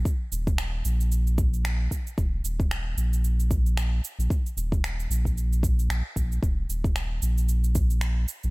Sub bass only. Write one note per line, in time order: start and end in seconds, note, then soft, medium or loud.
0.32 0.82 D#1 medium
0.85 1.88 A#1 medium
2.18 2.41 D#1 loud
2.44 2.94 D#1 medium
2.97 4.01 A#1 medium
4.19 4.28 A#1 medium
4.57 5.07 D#1 medium
5.10 5.89 A#1 medium
5.89 6.02 A#1 loud
6.16 6.39 A#1 medium
6.43 6.65 D#1 loud
6.69 7.19 D#1 medium
7.22 8.25 A#1 medium
8.44 8.50 A#1 medium